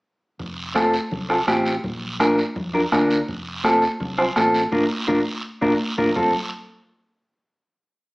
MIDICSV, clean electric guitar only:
0, 0, Header, 1, 2, 480
1, 0, Start_track
1, 0, Key_signature, -1, "major"
1, 0, Tempo, 360360
1, 523, Time_signature, 4, 2, 24, 8
1, 10842, End_track
2, 0, Start_track
2, 0, Title_t, "Clean electric guitar"
2, 0, Program_c, 0, 27
2, 990, Note_on_c, 0, 60, 80
2, 998, Note_on_c, 0, 65, 74
2, 1004, Note_on_c, 0, 69, 98
2, 1250, Note_off_c, 0, 60, 0
2, 1254, Note_off_c, 0, 65, 0
2, 1257, Note_off_c, 0, 69, 0
2, 1716, Note_on_c, 0, 60, 77
2, 1728, Note_on_c, 0, 65, 73
2, 1728, Note_on_c, 0, 69, 82
2, 1806, Note_off_c, 0, 60, 0
2, 1809, Note_off_c, 0, 65, 0
2, 1811, Note_off_c, 0, 69, 0
2, 1957, Note_on_c, 0, 60, 75
2, 1966, Note_on_c, 0, 65, 75
2, 1971, Note_on_c, 0, 67, 96
2, 2299, Note_off_c, 0, 60, 0
2, 2301, Note_off_c, 0, 65, 0
2, 2305, Note_off_c, 0, 67, 0
2, 2923, Note_on_c, 0, 62, 82
2, 2931, Note_on_c, 0, 65, 77
2, 2937, Note_on_c, 0, 70, 92
2, 3178, Note_off_c, 0, 62, 0
2, 3182, Note_off_c, 0, 65, 0
2, 3184, Note_off_c, 0, 70, 0
2, 3642, Note_on_c, 0, 62, 76
2, 3648, Note_on_c, 0, 65, 69
2, 3654, Note_on_c, 0, 70, 92
2, 3729, Note_off_c, 0, 62, 0
2, 3733, Note_off_c, 0, 65, 0
2, 3735, Note_off_c, 0, 70, 0
2, 3887, Note_on_c, 0, 62, 86
2, 3894, Note_on_c, 0, 65, 72
2, 3896, Note_on_c, 0, 70, 82
2, 4224, Note_off_c, 0, 62, 0
2, 4226, Note_off_c, 0, 65, 0
2, 4229, Note_off_c, 0, 70, 0
2, 4845, Note_on_c, 0, 60, 86
2, 4851, Note_on_c, 0, 65, 76
2, 4857, Note_on_c, 0, 69, 99
2, 5099, Note_off_c, 0, 60, 0
2, 5102, Note_off_c, 0, 65, 0
2, 5105, Note_off_c, 0, 69, 0
2, 5562, Note_on_c, 0, 60, 73
2, 5569, Note_on_c, 0, 65, 72
2, 5572, Note_on_c, 0, 72, 81
2, 5649, Note_off_c, 0, 60, 0
2, 5652, Note_off_c, 0, 65, 0
2, 5654, Note_off_c, 0, 72, 0
2, 5806, Note_on_c, 0, 60, 79
2, 5815, Note_on_c, 0, 65, 75
2, 5818, Note_on_c, 0, 69, 89
2, 6143, Note_off_c, 0, 60, 0
2, 6145, Note_off_c, 0, 65, 0
2, 6148, Note_off_c, 0, 69, 0
2, 6286, Note_on_c, 0, 62, 94
2, 6291, Note_on_c, 0, 65, 93
2, 6298, Note_on_c, 0, 70, 98
2, 6441, Note_off_c, 0, 70, 0
2, 6442, Note_off_c, 0, 62, 0
2, 6442, Note_off_c, 0, 65, 0
2, 6757, Note_on_c, 0, 62, 98
2, 6763, Note_on_c, 0, 65, 94
2, 6768, Note_on_c, 0, 70, 92
2, 6915, Note_off_c, 0, 62, 0
2, 6916, Note_off_c, 0, 70, 0
2, 6917, Note_off_c, 0, 65, 0
2, 7477, Note_on_c, 0, 62, 98
2, 7481, Note_on_c, 0, 65, 91
2, 7488, Note_on_c, 0, 70, 101
2, 7634, Note_off_c, 0, 65, 0
2, 7635, Note_off_c, 0, 62, 0
2, 7635, Note_off_c, 0, 70, 0
2, 7962, Note_on_c, 0, 62, 86
2, 7965, Note_on_c, 0, 65, 88
2, 7969, Note_on_c, 0, 70, 90
2, 8117, Note_off_c, 0, 62, 0
2, 8117, Note_off_c, 0, 65, 0
2, 8119, Note_off_c, 0, 70, 0
2, 8198, Note_on_c, 0, 60, 85
2, 8204, Note_on_c, 0, 65, 75
2, 8209, Note_on_c, 0, 69, 85
2, 8425, Note_off_c, 0, 60, 0
2, 8425, Note_off_c, 0, 65, 0
2, 8425, Note_off_c, 0, 69, 0
2, 10842, End_track
0, 0, End_of_file